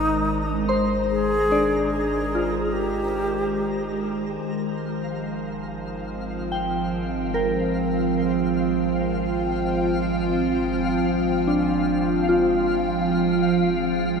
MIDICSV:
0, 0, Header, 1, 7, 480
1, 0, Start_track
1, 0, Tempo, 833333
1, 630, Time_signature, 4, 2, 24, 8
1, 4956, Tempo, 819672
1, 8233, End_track
2, 0, Start_track
2, 0, Title_t, "Synth texture"
2, 0, Program_c, 0, 99
2, 0, Note_on_c, 0, 82, 72
2, 2558, Note_off_c, 0, 82, 0
2, 2569, Note_on_c, 0, 77, 80
2, 8233, Note_off_c, 0, 77, 0
2, 8233, End_track
3, 0, Start_track
3, 0, Title_t, "Synth bell"
3, 0, Program_c, 1, 98
3, 0, Control_c, 1, 64, 127
3, 395, Note_on_c, 1, 84, 72
3, 398, Note_on_c, 1, 72, 70
3, 847, Note_off_c, 1, 72, 0
3, 873, Note_on_c, 1, 62, 56
3, 876, Note_on_c, 1, 74, 68
3, 1325, Note_off_c, 1, 62, 0
3, 1353, Note_on_c, 1, 65, 49
3, 2561, Control_c, 1, 64, 0
3, 2648, Control_c, 1, 64, 127
3, 2747, Note_off_c, 1, 84, 0
3, 3232, Note_off_c, 1, 74, 0
3, 3712, Note_off_c, 1, 65, 0
3, 3754, Note_on_c, 1, 79, 66
3, 4229, Note_on_c, 1, 70, 60
3, 6111, Note_off_c, 1, 79, 0
3, 6587, Note_off_c, 1, 70, 0
3, 6637, Note_on_c, 1, 62, 48
3, 7091, Note_off_c, 1, 62, 0
3, 7113, Note_on_c, 1, 65, 63
3, 8233, Note_off_c, 1, 65, 0
3, 8233, End_track
4, 0, Start_track
4, 0, Title_t, "Alto flute"
4, 0, Program_c, 2, 73
4, 0, Note_on_c, 2, 63, 102
4, 375, Note_off_c, 2, 63, 0
4, 636, Note_on_c, 2, 68, 106
4, 1087, Note_off_c, 2, 68, 0
4, 1094, Note_on_c, 2, 68, 101
4, 1566, Note_on_c, 2, 67, 92
4, 1575, Note_off_c, 2, 68, 0
4, 2301, Note_off_c, 2, 67, 0
4, 8233, End_track
5, 0, Start_track
5, 0, Title_t, "Synth drone"
5, 0, Program_c, 3, 95
5, 0, Note_on_c, 3, 56, 68
5, 0, Note_on_c, 3, 72, 68
5, 8233, Note_off_c, 3, 56, 0
5, 8233, Note_off_c, 3, 72, 0
5, 8233, End_track
6, 0, Start_track
6, 0, Title_t, "Ambient pad"
6, 0, Program_c, 4, 92
6, 0, Note_on_c, 4, 51, 82
6, 0, Note_on_c, 4, 56, 79
6, 0, Note_on_c, 4, 70, 71
6, 0, Note_on_c, 4, 72, 82
6, 2550, Note_off_c, 4, 56, 0
6, 2558, Note_on_c, 4, 53, 69
6, 2982, Note_on_c, 4, 65, 70
6, 3237, Note_on_c, 4, 60, 73
6, 3460, Note_on_c, 4, 79, 88
6, 3714, Note_off_c, 4, 70, 0
6, 4223, Note_off_c, 4, 72, 0
6, 4388, Note_off_c, 4, 51, 0
6, 8233, Note_off_c, 4, 53, 0
6, 8233, Note_off_c, 4, 60, 0
6, 8233, Note_off_c, 4, 65, 0
6, 8233, Note_off_c, 4, 79, 0
6, 8233, End_track
7, 0, Start_track
7, 0, Title_t, "Sub bass"
7, 0, Program_c, 5, 38
7, 0, Note_on_c, 5, 32, 84
7, 2524, Note_off_c, 5, 32, 0
7, 2548, Note_on_c, 5, 32, 90
7, 8233, Note_off_c, 5, 32, 0
7, 8233, End_track
0, 0, End_of_file